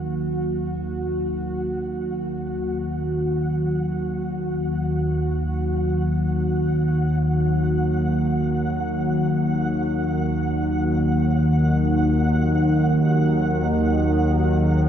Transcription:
0.00 14.89 D#2 medium
0.00 14.89 D#3 medium
0.00 14.89 F#3 medium
0.00 14.89 A#3 medium
0.00 14.72 F#4 medium
0.00 14.89 F#5 medium
14.42 14.89 G#4 medium

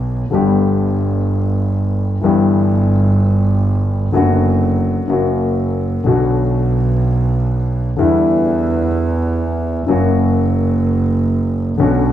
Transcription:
0.00 0.22 B1 medium
0.00 0.22 B2 medium
0.00 0.21 D3 medium
0.00 0.22 A3 soft
0.00 0.23 B3 medium
0.00 0.23 F#4 medium
0.31 2.13 G1 medium
0.31 2.14 G1 medium
0.31 2.14 G2 medium
0.31 2.13 D3 medium
0.31 2.13 G3 medium
0.31 2.14 B3 soft
0.31 2.15 G4 medium
2.21 4.04 G1 medium
2.21 4.04 G2 medium
2.21 4.03 E3 medium
2.21 4.04 G3 medium
2.21 4.05 B3 medium
2.26 4.05 G4 medium
4.12 5.05 F#1 medium
4.12 5.05 F#2 medium
4.12 5.04 D3 medium
4.12 5.05 F#3 medium
4.12 5.05 B3 soft
4.16 5.06 F#4 medium
5.08 6.01 F#1 medium
5.08 6.01 F#2 medium
5.08 6.00 C#3 soft
5.08 6.01 F#3 medium
5.08 6.02 A#3 soft
5.08 6.02 F#4 medium
6.04 7.89 B1 medium
6.04 7.89 B2 medium
6.04 7.88 D3 medium
6.04 7.89 F#3 soft
6.04 7.89 B3 soft
6.08 7.90 F#4 medium
7.96 9.79 E2 medium
7.96 9.78 D3 medium
7.96 9.79 E3 medium
7.96 9.79 G3 medium
7.96 9.80 B3 soft
8.01 9.80 E4 medium
9.87 11.69 F#1 medium
9.87 11.70 F#2 medium
9.87 11.68 C#3 medium
9.87 11.69 F#3 medium
9.87 11.70 A#3 medium
9.91 11.71 F#4 medium
11.77 12.12 B1 medium
11.77 12.12 B2 medium
11.77 12.12 D3 medium
11.77 12.12 B3 medium
11.77 12.12 C#4 medium
11.82 12.12 F#4 medium

